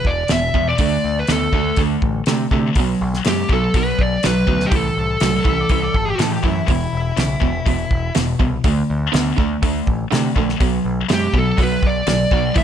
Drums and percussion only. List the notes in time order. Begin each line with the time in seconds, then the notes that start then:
0.05 kick
0.28 snare, open hi-hat
0.54 kick
0.78 kick, open hi-hat
1.27 snare, open hi-hat
1.53 kick
1.76 kick, open hi-hat
2.02 kick
2.26 snare, open hi-hat
2.51 kick
2.75 kick, open hi-hat
3.14 snare
3.25 snare, open hi-hat
3.49 kick
3.74 kick, open hi-hat
3.99 kick
4.23 snare, open hi-hat
4.47 kick
4.60 snare
4.72 kick, open hi-hat
5.20 snare, open hi-hat
5.45 kick
5.69 kick, open hi-hat
5.94 kick
6.19 snare, open hi-hat
6.44 kick
6.68 kick, open hi-hat
7.17 snare, open hi-hat
7.42 kick
7.66 kick, open hi-hat
7.91 kick
8.15 snare, open hi-hat
8.40 kick
8.64 kick, open hi-hat
9.14 snare, open hi-hat
9.38 kick
9.63 kick, open hi-hat
9.87 kick
10.12 snare, open hi-hat
10.36 kick
10.49 snare
10.61 kick, open hi-hat
11.09 snare, open hi-hat
11.34 kick
11.58 kick, open hi-hat
11.83 kick
12.07 snare, open hi-hat
12.31 kick
12.56 kick, open hi-hat